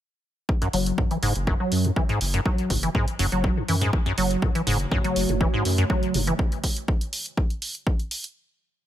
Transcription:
0.49 kick loud
0.62 0.68 F#2 loud
0.62 closed hi-hat soft
0.73 0.92 F#1 loud
0.73 0.99 F#3 medium
0.73 open hi-hat loud
0.86 closed hi-hat medium
0.98 1.05 F#2 loud
0.98 kick loud
1.11 1.17 E3 medium
1.11 closed hi-hat medium
1.23 1.32 F#1 medium
1.23 1.33 G#2 loud
1.23 open hi-hat loud
1.36 1.53 F#1 loud
1.36 closed hi-hat medium
1.47 1.54 F#2 loud
1.47 kick loud
1.60 1.86 F#3 medium
1.72 1.90 F#2 loud
1.72 open hi-hat loud
1.85 1.91 F#2 loud
1.85 closed hi-hat medium
1.96 2.03 E3 medium
1.96 kick loud
2.09 2.19 G#2 loud
2.09 closed hi-hat soft
2.21 2.40 F#1 loud
2.21 open hi-hat loud
2.34 2.40 F#2 loud
2.34 closed hi-hat medium
2.46 2.72 F#3 medium
2.46 kick loud
2.58 closed hi-hat medium
2.70 2.89 F#1 loud
2.70 2.77 F#2 loud
2.70 kick medium
2.70 open hi-hat loud
2.83 2.89 E3 medium
2.83 closed hi-hat medium
2.95 3.05 G#2 loud
2.95 kick loud
3.08 closed hi-hat soft
3.19 3.29 F#1 medium
3.19 3.26 F#2 loud
3.19 open hi-hat loud
3.32 3.50 F#1 loud
3.32 3.58 F#3 medium
3.32 closed hi-hat medium
3.44 kick loud
3.57 3.63 F#2 loud
3.68 3.87 F#2 medium
3.68 3.76 E3 medium
3.68 open hi-hat loud
3.81 3.91 G#2 loud
3.81 closed hi-hat medium
3.93 kick loud
4.06 4.12 F#2 loud
4.06 closed hi-hat soft
4.18 4.36 F#1 loud
4.18 4.44 F#3 medium
4.18 open hi-hat loud
4.31 closed hi-hat medium
4.42 4.49 F#2 loud
4.42 6.37 C#3 medium
4.42 6.37 A3 medium
4.42 6.37 F#4 medium
4.42 6.37 C#5 medium
4.42 kick loud
4.55 4.62 E3 medium
4.55 closed hi-hat soft
4.67 4.85 F#1 loud
4.67 4.78 G#2 loud
4.67 open hi-hat loud
4.80 closed hi-hat medium
4.91 4.99 F#2 loud
4.91 kick loud
5.04 5.30 F#3 medium
5.04 closed hi-hat soft
5.16 5.26 F#1 medium
5.16 open hi-hat loud
5.29 5.47 F#1 loud
5.29 5.35 F#2 loud
5.29 closed hi-hat medium
5.40 5.48 E3 medium
5.40 kick loud
5.53 5.63 G#2 loud
5.65 5.84 F#2 medium
5.65 open hi-hat loud
5.78 5.85 F#2 medium
5.78 closed hi-hat medium
5.90 6.16 F#3 medium
5.90 kick loud
6.03 closed hi-hat soft
6.14 6.33 F#1 medium
6.14 6.21 F#2 loud
6.14 open hi-hat loud
6.27 6.34 E3 medium
6.27 closed hi-hat medium
6.39 kick loud
6.52 closed hi-hat soft
6.64 kick medium
6.64 open hi-hat loud
6.77 closed hi-hat medium
6.88 kick loud
7.01 closed hi-hat soft
7.13 open hi-hat loud
7.26 closed hi-hat medium
7.37 kick loud
7.50 closed hi-hat soft
7.62 open hi-hat loud
7.75 closed hi-hat medium
7.87 kick loud
7.99 closed hi-hat soft
8.11 open hi-hat loud
8.24 closed hi-hat medium

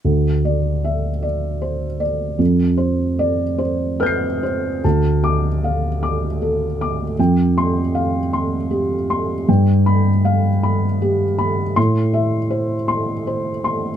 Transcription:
0.05 2.36 D2 soft
0.45 1.08 D5 soft
0.84 1.24 E5 soft
1.23 1.85 D5 soft
1.62 2.01 C5 soft
2.00 2.39 D5 soft
2.39 4.80 F2 soft
2.77 3.42 C5 soft
3.19 3.59 D5 soft
3.58 4.26 C5 soft
4.00 4.43 B4 soft
4.00 4.80 F6 soft
4.00 4.82 G6 soft
4.06 4.83 C7 soft
4.43 4.84 C5 soft
4.84 7.14 D2 soft
4.84 5.48 A5 soft
5.24 5.86 D6 soft
5.64 6.26 F5 soft
6.03 6.64 D6 soft
6.42 7.03 A4 soft
6.81 7.19 D6 soft
7.19 9.44 F2 soft
7.19 7.80 G5 soft
7.58 8.18 C6 medium
7.95 8.56 F5 soft
8.33 8.94 C6 soft
8.71 9.32 G4 soft
9.10 9.48 C6 soft
9.49 11.73 G2 medium
9.49 10.10 G5 soft
9.86 10.48 B5 medium
10.25 10.86 F5 soft
10.63 11.24 B5 soft
11.02 11.62 G4 soft
11.39 11.77 B5 soft
11.76 13.97 A2 medium
11.76 12.37 C6 medium
12.14 12.74 E5 soft
12.50 13.11 C5 soft
12.88 13.49 C6 soft
13.27 13.88 C5 soft
13.64 13.97 C6 soft

